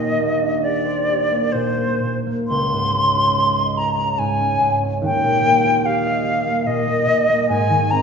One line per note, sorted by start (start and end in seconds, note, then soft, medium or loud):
0.00 2.53 D#2 soft
0.00 1.53 A#2 soft
0.00 0.19 A#3 soft
0.00 0.40 D4 soft
0.00 0.63 G4 soft
0.00 2.12 A#4 soft
0.00 0.61 D#5 medium
0.20 1.31 A#3 soft
0.41 2.54 D4 soft
0.62 1.08 G4 soft
0.62 1.54 D5 medium
0.85 2.53 C5 soft
1.09 2.54 G4 soft
1.32 1.77 A#3 soft
1.52 2.02 A#2 soft
1.52 2.18 C5 medium
1.78 2.25 A#3 soft
2.03 2.54 A#2 soft
2.27 2.53 A#3 soft
2.48 5.07 C#2 soft
2.48 3.79 C6 medium
2.72 4.18 G#2 soft
2.95 3.97 C#4 soft
3.16 5.63 F4 soft
3.38 3.77 G#4 soft
3.59 6.05 D#5 soft
3.77 5.07 G#4 soft
3.77 4.20 A#5 medium
3.99 4.39 C#4 soft
4.18 4.60 G#2 soft
4.18 4.76 G#5 medium
4.40 4.81 C#4 soft
4.61 5.06 G#2 soft
4.83 5.07 C#4 soft
5.02 7.52 D#2 medium
5.02 5.87 G5 medium
5.23 6.65 A#2 soft
5.45 6.45 A#3 soft
5.64 7.52 F4 soft
5.85 6.23 G4 soft
5.85 6.68 F5 medium
6.06 8.02 D#5 soft
6.24 8.02 G4 soft
6.46 6.86 A#3 soft
6.67 7.07 A#2 soft
6.67 7.48 D#5 medium
6.87 7.28 A#3 soft
7.08 7.52 A#2 soft
7.29 7.53 A#3 soft
7.49 8.02 G#2 medium
7.49 7.92 G#5 medium
7.70 8.02 D#3 soft
7.91 8.02 C4 soft
7.91 8.02 A#5 medium